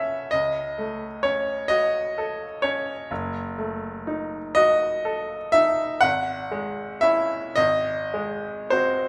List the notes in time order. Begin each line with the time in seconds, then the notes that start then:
Already playing: F#1 C#4 F#4 A4 C#5 E5 F#5
0.31 C#2 D#5
0.78 A3
1.23 C#4 C#5
1.68 F#4 D#5
2.18 A4
2.62 C#4 C#5
3.11 F#1
3.58 A3
4.07 D#4
4.55 F#4 D#5
5.05 A4
5.52 D#4 E5
6.01 G#1 F#5
6.51 G#3
7.01 C#4 E4 E5
7.56 G#1 D#5
8.14 G#3
8.70 C4 F#4 C5